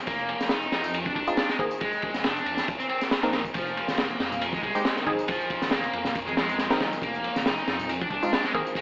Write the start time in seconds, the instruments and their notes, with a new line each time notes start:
0.07 detuned saw bass F1, distorted electric guitar A#3, kick, ride, tambourine
0.19 tambourine
0.29 ride
0.40 detuned saw bass F1, snare, tambourine
0.49 distorted electric guitar D#4, snare, ride, tambourine
0.62 tambourine
0.72 detuned saw bass F2, snare, ride
0.84 tambourine
0.94 ride, tambourine
1.06 distorted electric guitar D4, kick, tambourine
1.16 detuned saw bass C2, distorted electric guitar D4, kick, ride
1.27 synth stab G#3 C4 D#4 F4, tambourine
1.37 snare, ride, tambourine
1.49 distorted electric guitar G#3, snare, tambourine
1.59 synth stab D#3 A#3 C4 G#4, distorted electric guitar A#3, kick, ride
1.71 tambourine
1.81 distorted electric guitar G#3, kick, ride, tambourine
1.93 tambourine
2.02 kick, ride
2.14 detuned saw bass F1, snare, tambourine
2.24 distorted electric guitar D4, snare, ride, tambourine
2.36 ride, tambourine
2.46 detuned saw bass F2, ride
2.57 snare, tambourine
2.68 kick, ride, tambourine
2.79 distorted electric guitar C4, tambourine
2.89 distorted electric guitar C4, ride
3.01 snare, tambourine
3.11 snare, ride, tambourine
3.23 detuned saw bass A#1, synth stab A#3 C4 D#4 A#4, distorted electric guitar D4, snare, tambourine
3.32 distorted electric guitar D#4, snare, ride
3.44 kick, tambourine
3.54 detuned saw bass F1, distorted electric guitar F3, kick, ride, tambourine
3.67 tambourine
3.77 ride
3.88 detuned saw bass F1, snare, tambourine, high conga
3.98 distorted electric guitar A#3, snare, ride
4.10 tambourine
4.20 detuned saw bass F2, snare, ride
4.32 tambourine, low conga
4.41 ride, tambourine
4.53 distorted electric guitar G#3, kick, tambourine, high conga
4.63 detuned saw bass C2, distorted electric guitar G#3, kick, ride
4.75 synth stab G#3 C4 D#4 G4, tambourine
4.85 snare, ride, tambourine
4.96 distorted electric guitar D#3, snare, tambourine
5.06 distorted electric guitar F3, synth stab G#3 C4 D#4 G#4, kick, ride, high conga
5.19 tambourine
5.28 distorted electric guitar F3, kick, ride, tambourine
5.41 tambourine
5.50 kick, ride
5.62 detuned saw bass F1, snare, tambourine, high conga
5.71 distorted electric guitar A#3, snare, ride, tambourine
5.84 ride, tambourine
5.93 detuned saw bass F2, ride
6.05 snare, tambourine, low conga
6.15 detuned saw bass F2, kick, ride, tambourine
6.27 distorted electric guitar G#3, tambourine, high conga
6.37 distorted electric guitar G#3, snare, ride
6.49 tambourine
6.59 snare, ride, tambourine
6.70 distorted electric guitar D#3, synth stab G#3 C4 D#4 A#4, snare, ride
6.80 detuned saw bass D#1, distorted electric guitar F3, snare, ride, high conga
6.93 tambourine
7.01 detuned saw bass F1, distorted electric guitar A#3, kick, ride, tambourine
7.14 tambourine
7.24 ride
7.36 detuned saw bass F1, snare, tambourine, high conga
7.46 distorted electric guitar D#4, snare, ride, tambourine
7.58 tambourine
7.67 detuned saw bass F2, snare, ride
7.80 tambourine, low conga
7.89 ride, tambourine
8.01 distorted electric guitar D4, kick, tambourine, high conga
8.10 detuned saw bass C2, distorted electric guitar D4, kick, ride
8.23 synth stab G#3 C4 D#4 F4, tambourine
8.33 snare, ride
8.44 distorted electric guitar G#3, snare, tambourine
8.54 synth stab D#3 A#3 C4 G#4, distorted electric guitar A#3, kick, ride, high conga
8.67 tambourine
8.75 distorted electric guitar G#3, kick, ride, tambourine